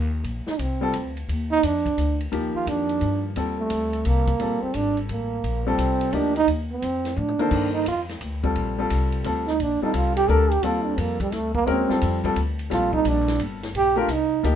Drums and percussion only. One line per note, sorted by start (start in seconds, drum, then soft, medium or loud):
0.24 ride medium
0.47 snare soft
0.59 ride medium
0.93 hi-hat pedal medium
0.93 ride medium
1.17 ride soft
1.29 ride medium
1.63 hi-hat pedal medium
1.63 ride medium
1.86 kick medium
1.86 ride soft
1.98 hi-hat pedal medium
1.98 ride medium
2.21 ride soft
2.32 ride medium
2.67 hi-hat pedal soft
2.67 ride medium
2.89 ride soft
3.01 ride medium
3.36 ride medium
3.70 hi-hat pedal medium
3.70 ride medium
3.93 ride soft
4.05 hi-hat pedal soft
4.05 ride medium
4.27 kick medium
4.27 ride soft
4.40 ride medium
4.74 hi-hat pedal medium
4.74 ride medium
4.97 ride soft
5.09 ride medium
5.44 ride medium
5.79 hi-hat pedal medium
5.79 ride medium
6.01 ride soft
6.13 hi-hat pedal soft
6.13 ride medium
6.36 ride medium
6.48 ride medium
6.82 hi-hat pedal medium
6.82 ride medium
7.05 snare soft
7.05 ride soft
7.16 high tom soft
7.28 mid tom medium
7.39 mid tom medium
7.51 kick medium
7.51 crash medium
7.86 hi-hat pedal soft
7.86 ride medium
8.09 snare soft
8.09 ride soft
8.21 hi-hat pedal medium
8.21 ride medium
8.44 kick medium
8.55 ride medium
8.90 hi-hat pedal medium
8.90 ride medium
9.12 ride soft
9.24 ride medium
9.47 snare soft
9.60 ride medium
9.94 hi-hat pedal medium
9.94 ride medium
10.17 ride medium
10.29 hi-hat pedal medium
10.51 ride medium
10.63 ride medium
10.98 hi-hat pedal medium
10.98 ride medium
11.20 kick medium
11.20 ride soft
11.32 snare soft
11.32 ride medium
11.55 kick medium
11.67 ride medium
11.90 snare soft
12.01 hi-hat pedal medium
12.01 ride medium
12.24 kick medium
12.24 ride soft
12.36 hi-hat pedal medium
12.36 ride medium
12.59 ride soft
12.71 snare soft
12.71 ride medium
12.93 kick medium
13.05 hi-hat pedal medium
13.05 ride medium
13.28 snare soft
13.28 ride medium
13.39 ride medium
13.63 snare soft
13.63 ride medium
13.75 ride medium
14.09 hi-hat pedal medium
14.09 ride medium
14.44 hi-hat pedal medium
14.44 ride medium